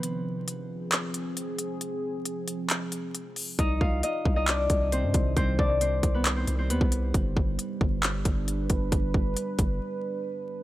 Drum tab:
HH |x---x---x-x-x-x-|x---x-x-x-x-x-o-|x---x---x-x-x-x-|x---x-x-x-x-x-x-|
CP |--------x-------|--------x-------|--------x-------|--------x-------|
BD |----------------|----------------|o-o---o---o---o-|o-o---o------o--|

HH |x---x---x-x-x-x-|x---x-x---------|
CP |--------x-------|----------------|
BD |o-o---o---o---o-|o-o---o---------|